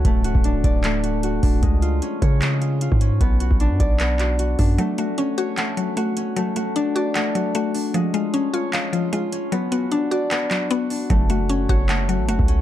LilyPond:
<<
  \new Staff \with { instrumentName = "Harp" } { \time 4/4 \key fis \minor \tempo 4 = 152 a8 fis'8 d'8 d''8 a8 fis'8 fis'8 d'8 | gis8 eis'8 cis'8 cis''8 gis8 eis'8 eis'8 cis'8 | b8 fis'8 d'8 d''8 b8 fis'8 fis'8 d'8 | a8 fis'8 cis'8 cis''8 a8 fis'8 fis'8 cis'8 |
a8 fis'8 d'8 d''8 a8 fis'8 fis'8 d'8 | gis8 eis'8 cis'8 cis''8 gis8 eis'8 eis'8 cis'8 | b8 fis'8 d'8 d''8 b8 fis'8 fis'8 d'8 | a8 fis'8 cis'8 cis''8 a8 fis'8 fis'8 cis'8 | }
  \new Staff \with { instrumentName = "Synth pluck" } { \time 4/4 \key fis \minor r1 | r1 | r1 | fis8 a8 cis'8 fis'8 fis''8 fis8 a4 |
fis8 a8 d'8 fis'8 fis''8 fis8 a4 | eis8 gis8 cis'8 eis'8 eis''8 eis8 gis4 | fis8 b8 d'8 fis'8 fis''8 fis8 b4 | fis8 a8 cis'8 fis'8 fis''8 fis8 a4 | }
  \new Staff \with { instrumentName = "808-style bass" } { \clef bass \time 4/4 \key fis \minor d,,8. d,,8. d,,2 d,,8 | cis,4 r8 cis4.~ cis16 gis,8. | b,,8. b,,8 fis,16 b,,2 fis,8 | r1 |
r1 | r1 | r1 | fis,,4. fis,,4~ fis,,16 a,,16 fis,,16 cis,8. | }
  \new DrumStaff \with { instrumentName = "Drums" } \drummode { \time 4/4 <hh bd>8 hh16 bd16 hh8 <hh bd>8 <hc hh>8 hh8 hh8 <hho bd>8 | <hh bd>8 hh8 hh8 <hh bd>8 <hc hh>8 hh8 hh16 bd16 hh8 | <hh bd>8 hh16 bd16 hh8 <hh bd>8 <hc hh>8 <hc hh>8 hh8 <hho bd>8 | hh8 hh8 hh8 hh8 <hc hh>8 hh8 hh8 hh8 |
hh8 hh8 hh8 hh8 <hc hh>8 hh8 hh8 hho8 | hh8 hh8 hh8 hh8 <hc hh>8 hh8 hh8 hh8 | hh8 hh8 hh8 hh8 <hc hh>8 <hc hh>8 hh8 hho8 | <hh bd>8 hh8 hh8 <hh bd>8 <hc hh>8 hh8 hh16 bd16 hh8 | }
>>